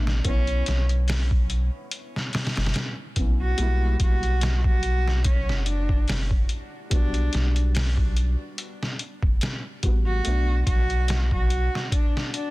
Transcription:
Already playing: sub bass A1, felt piano A3 B3 D4
0.07 snare
0.25 sub bass B1, felt piano B3 C#4 E4, cello C#4, kick, closed hi-hat
0.47 closed hi-hat
0.66 sub bass B1, snare, closed hi-hat
0.89 closed hi-hat
1.08 snare, open hi-hat
1.31 kick
1.50 closed hi-hat
1.91 closed hi-hat
2.16 snare
2.33 snare, open hi-hat
2.45 snare, open hi-hat
2.56 sub bass F#1, snare, open hi-hat
2.65 snare, open hi-hat
2.74 snare, closed hi-hat
3.16 sub bass B1, felt piano B3 C#4 E4, kick, closed hi-hat
3.42 cello F#4
3.58 sub bass B1, felt piano G3 A#3 E4, closed hi-hat
4.00 sub bass B1, cello F#4, kick, closed hi-hat
4.23 closed hi-hat
4.41 snare, closed hi-hat
4.64 cello F#4, kick
4.83 closed hi-hat
5.08 snare
5.24 cello C#4, kick, closed hi-hat
5.49 sub bass F#1, snare
5.66 cello D4, closed hi-hat
5.89 kick
6.08 snare, open hi-hat
6.31 kick
6.49 closed hi-hat
6.90 sub bass B1, felt piano G3 B3, cello D4, kick, closed hi-hat
6.94 felt piano F#4
7.14 closed hi-hat
7.33 sub bass B1, snare, closed hi-hat
7.56 closed hi-hat
7.75 snare, open hi-hat
7.98 kick
8.17 closed hi-hat
8.58 closed hi-hat
8.83 snare
8.99 closed hi-hat
9.22 sub bass F#1, kick
9.41 snare, closed hi-hat
9.83 sub bass A1, felt piano G3 B3 F#4, kick, closed hi-hat
10.07 cello F#4
10.24 sub bass B1, felt piano A3 B3, closed hi-hat
10.28 felt piano D4
10.67 sub bass B1, cello F#4, kick, closed hi-hat
10.90 closed hi-hat
11.08 snare, closed hi-hat
11.31 cello F#4, kick
11.50 closed hi-hat
11.75 snare
11.92 cello D4, kick, closed hi-hat
12.17 snare
12.34 cello D4, closed hi-hat

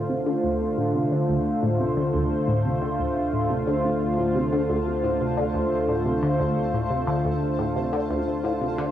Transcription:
Already playing: synth drone D2, analog synth pad D3 A3 F4 C5, synth texture C5 A5
0.09 synth arpeggio sound C3
0.26 synth arpeggio sound D3
0.43 synth arpeggio sound D2
0.78 synth arpeggio sound A2
0.94 synth arpeggio sound C3
1.12 synth arpeggio sound D3
1.29 synth arpeggio sound D2
1.63 synth arpeggio sound A2
1.80 synth arpeggio sound C3
1.97 synth arpeggio sound D3
2.14 synth arpeggio sound D2
2.48 synth arpeggio sound A2
2.65 synth arpeggio sound C3
2.82 synth arpeggio sound D3
2.99 synth arpeggio sound D2
3.33 synth arpeggio sound A2
3.50 synth arpeggio sound C3
3.67 synth arpeggio sound D3
3.84 synth arpeggio sound D2
4.18 synth arpeggio sound A2
4.35 synth arpeggio sound C3
4.52 synth arpeggio sound D3
4.69 synth arpeggio sound D2
5.03 synth arpeggio sound A2
5.20 synth arpeggio sound C3
5.37 synth arpeggio sound D3
5.54 synth arpeggio sound D2
5.88 synth arpeggio sound A2
6.05 synth arpeggio sound C3
6.23 synth arpeggio sound D3
6.40 synth arpeggio sound D2
6.73 synth arpeggio sound A2
6.90 synth arpeggio sound C3
7.08 synth arpeggio sound D3
7.25 synth arpeggio sound D2
7.59 synth arpeggio sound A2
7.76 synth arpeggio sound C3
7.93 synth arpeggio sound D3
8.10 synth arpeggio sound D2
8.44 synth arpeggio sound A2
8.61 synth arpeggio sound C3
8.78 synth arpeggio sound D3

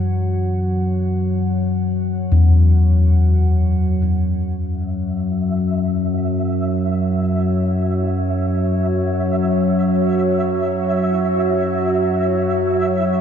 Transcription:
Already playing: synth drone F#2 F#3, kettle gongs F#3, analog synth pad F#4 C#5 F#5
2.32 kettle gongs E2
4.58 synth drone F#2 F#3, analog synth pad F#4, synth texture E5
5.15 analog synth pad C#5
5.60 kettle gongs F#4

